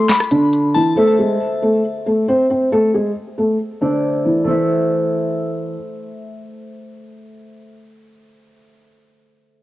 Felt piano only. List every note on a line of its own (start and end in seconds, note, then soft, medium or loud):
0.31 0.73 D3 medium
0.31 0.72 D4 medium
0.75 0.92 E3 medium
0.75 0.92 E4 medium
0.97 1.14 A3 medium
0.97 1.13 A4 loud
1.19 1.36 G#3 medium
1.19 1.35 G#4 medium
1.62 1.80 A3 medium
1.62 1.79 A4 medium
2.06 2.23 A3 medium
2.06 2.23 A4 medium
2.28 2.45 C4 medium
2.28 2.45 C5 medium
2.50 2.67 C4 medium
2.50 2.67 C5 medium
2.72 2.89 A3 medium
2.72 2.89 A4 loud
2.94 3.11 G#3 medium
2.94 3.11 G#4 medium
3.38 3.55 A3 medium
3.38 3.54 A4 medium
3.82 4.23 D3 medium
3.82 4.23 D4 medium
4.25 4.42 E3 medium
4.25 4.42 E4 medium
4.47 5.75 E3 medium